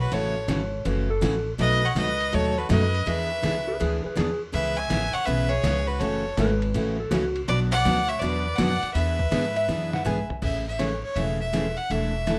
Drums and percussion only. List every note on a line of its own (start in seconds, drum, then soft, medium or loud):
0.12 ride medium
0.49 snare medium
0.49 hi-hat pedal medium
0.49 ride medium
0.85 ride medium
1.22 snare medium
1.22 hi-hat pedal medium
1.22 ride medium
1.59 ride medium
1.96 snare medium
1.96 hi-hat pedal medium
1.96 ride medium
2.20 ride medium
2.33 ride medium
2.70 snare medium
2.70 hi-hat pedal medium
2.70 ride medium
2.94 ride soft
3.07 ride medium
3.44 snare medium
3.44 hi-hat pedal medium
3.44 ride medium
3.81 ride medium
4.17 snare medium
4.17 hi-hat pedal medium
4.17 ride medium
4.54 ride medium
4.90 snare medium
4.90 hi-hat pedal medium
4.90 ride medium
5.14 ride soft
5.27 ride medium
5.64 snare medium
5.64 hi-hat pedal medium
5.64 ride medium
6.01 ride medium
6.37 snare medium
6.37 hi-hat pedal medium
6.37 ride medium
6.62 ride medium
6.74 ride medium
7.12 snare medium
7.12 hi-hat pedal medium
7.12 ride medium
7.36 ride soft
7.48 ride medium
7.85 snare medium
7.85 hi-hat pedal medium
7.85 ride medium
8.10 ride soft
8.22 ride medium
8.58 snare medium
8.58 hi-hat pedal medium
8.58 ride medium
8.83 ride soft
8.95 ride medium
9.19 kick medium
9.32 snare medium
9.32 hi-hat pedal medium
9.32 ride medium
9.56 ride medium
9.69 snare soft
9.93 snare medium
10.06 floor tom medium
10.06 hi-hat pedal medium
10.30 floor tom medium
10.42 kick medium
10.42 crash medium
10.79 snare medium
10.79 hi-hat pedal medium
10.79 ride medium
11.16 ride medium
11.54 snare medium
11.54 hi-hat pedal medium
11.54 ride medium
11.78 ride soft
11.91 ride medium
12.27 snare medium
12.27 hi-hat pedal medium
12.27 ride medium